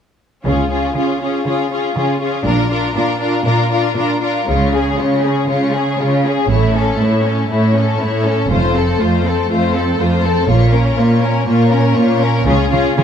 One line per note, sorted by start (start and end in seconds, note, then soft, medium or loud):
0.44 0.89 C#2 soft
0.44 0.88 C#3 soft
0.44 0.69 C#4 soft
0.44 0.71 F4 soft
0.44 0.69 G#4 soft
0.70 0.95 C#4 soft
0.70 0.95 F4 soft
0.70 0.96 G#4 soft
0.96 1.38 C#3 soft
0.96 1.20 C#4 soft
0.96 1.21 F4 soft
0.96 1.21 G#4 soft
1.21 1.45 C#4 soft
1.21 1.46 F4 soft
1.21 1.46 G#4 soft
1.46 1.88 C#3 soft
1.46 1.69 C#4 soft
1.46 1.71 F4 soft
1.46 1.71 G#4 soft
1.70 1.95 C#4 soft
1.70 1.96 F4 soft
1.70 1.96 G#4 soft
1.96 2.37 C#3 soft
1.96 2.19 C#4 soft
1.96 2.21 F4 soft
1.96 2.20 G#4 soft
2.20 2.45 C#4 soft
2.20 2.46 F4 soft
2.20 2.46 G#4 soft
2.45 2.87 A#1 soft
2.45 2.87 A#2 medium
2.45 2.68 D4 soft
2.45 2.69 F4 soft
2.45 2.70 A#4 soft
2.69 2.93 D4 soft
2.69 2.95 F4 soft
2.69 2.95 A#4 soft
2.95 3.38 A#2 medium
2.95 3.18 D4 soft
2.95 3.20 F4 soft
2.95 3.20 A#4 soft
3.19 3.43 D4 soft
3.19 3.44 F4 soft
3.19 3.45 A#4 soft
3.44 3.88 A#2 medium
3.44 3.68 D4 soft
3.44 3.70 F4 soft
3.44 3.70 A#4 soft
3.69 3.95 D4 soft
3.69 3.95 F4 soft
3.69 3.95 A#4 soft
3.96 4.40 A#2 soft
3.96 4.21 D4 soft
3.96 4.21 F4 soft
3.96 4.22 A#4 soft
4.22 4.48 D4 soft
4.22 4.48 F4 soft
4.22 4.48 A#4 soft
4.48 4.91 C#2 soft
4.48 4.93 C#3 soft
4.48 4.72 G#3 soft
4.48 4.73 F4 soft
4.48 4.72 C#5 soft
4.73 4.99 C#4 soft
4.73 4.99 G#4 soft
4.73 5.00 G#4 soft
4.98 5.44 C#3 soft
4.98 5.24 G#3 soft
4.98 5.24 F4 soft
4.98 5.25 C#5 soft
5.22 5.50 C#4 soft
5.22 5.49 G#4 soft
5.22 5.50 G#4 soft
5.48 5.94 C#3 soft
5.48 5.73 G#3 soft
5.48 5.72 F4 soft
5.48 5.73 C#5 soft
5.74 6.00 C#4 soft
5.74 6.00 G#4 soft
5.99 6.44 C#3 soft
5.99 6.25 G#3 soft
5.99 6.25 F4 soft
5.99 6.25 C#5 soft
6.25 6.51 C#4 soft
6.25 6.50 G#4 soft
6.25 6.51 G#4 soft
6.50 6.92 A1 soft
6.50 6.94 A2 soft
6.50 6.73 A3 soft
6.50 6.74 E4 soft
6.50 6.74 C#5 soft
6.75 7.00 C#4 soft
6.75 7.01 A4 soft
6.98 7.44 A2 soft
6.98 7.25 A3 soft
6.98 7.24 E4 soft
6.98 7.26 C#5 soft
7.23 7.49 C#4 soft
7.23 7.50 C#4 soft
7.27 7.51 A4 soft
7.49 7.94 A2 soft
7.49 7.73 A3 soft
7.49 7.73 E4 soft
7.53 7.75 C#5 soft
7.75 8.00 C#4 soft
7.75 8.02 A4 soft
8.00 8.44 A2 soft
8.00 8.25 A3 soft
8.00 8.25 E4 soft
8.00 8.26 C#5 soft
8.25 8.50 C#4 soft
8.25 8.51 A4 soft
8.50 8.92 F1 soft
8.50 8.94 F2 medium
8.50 8.73 A3 soft
8.50 8.74 F4 soft
8.50 8.74 C5 soft
8.75 9.00 C4 soft
8.75 9.01 A4 soft
9.00 9.44 F2 medium
9.00 9.25 A3 soft
9.00 9.25 F4 soft
9.00 9.26 C5 soft
9.25 9.50 C4 soft
9.25 9.50 A4 soft
9.25 9.51 A4 soft
9.50 9.94 F2 medium
9.50 9.73 A3 soft
9.50 9.74 F4 soft
9.50 9.74 C5 soft
9.73 9.99 C4 soft
9.73 9.99 A4 soft
9.73 10.00 A4 soft
9.98 10.43 F2 medium
9.98 10.23 A3 soft
9.98 10.25 F4 soft
9.98 10.24 C5 soft
10.23 10.49 C4 soft
10.23 10.49 A4 soft
10.23 10.50 A4 soft
10.48 10.90 A#1 soft
10.48 10.93 A#2 medium
10.48 10.71 A#3 soft
10.48 10.73 F4 soft
10.48 10.72 C#5 soft
10.73 10.99 C#4 soft
10.73 10.98 A#4 soft
10.97 11.42 A#2 medium
10.97 11.23 A#3 soft
10.97 11.23 F4 soft
10.97 11.23 C#5 soft
11.22 11.47 C#4 soft
11.22 11.48 C#4 soft
11.22 11.48 A#4 soft
11.47 11.91 A#2 medium
11.47 11.71 A#3 soft
11.47 11.71 F4 soft
11.47 11.71 C#5 soft
11.71 11.97 C#4 soft
11.71 11.97 A#4 soft
11.96 12.41 A#2 medium
11.96 12.22 A#3 soft
11.96 12.22 F4 soft
11.96 12.22 C#5 soft
12.22 12.45 C#4 soft
12.22 12.47 C#4 soft
12.22 12.47 A#4 soft
12.45 12.70 C#2 medium
12.45 12.54 C#3 medium
12.45 12.70 C#4 soft
12.45 12.70 F4 soft
12.45 12.72 G#4 medium
12.71 12.80 C#3 medium
12.71 12.96 C#4 soft
12.71 12.96 F4 soft
12.71 12.97 G#4 soft
12.97 13.04 C#3 medium
12.97 13.04 C#4 medium
12.97 13.04 F4 soft
12.97 13.04 G#4 soft